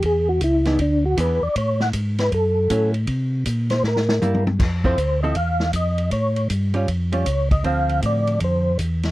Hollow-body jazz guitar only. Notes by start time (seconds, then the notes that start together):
0.66 E3 B3 D4 G#4
1.17 E3 B3 D4 G#4
2.70 F#3 C#4 E4
4.22 G3 A#3 E4
4.84 F3 C4 E4 A4
5.24 F3 C4 E4 A4
6.74 G3 C#4 F4
7.12 G3 C#4 F4
7.64 D3 F3 C4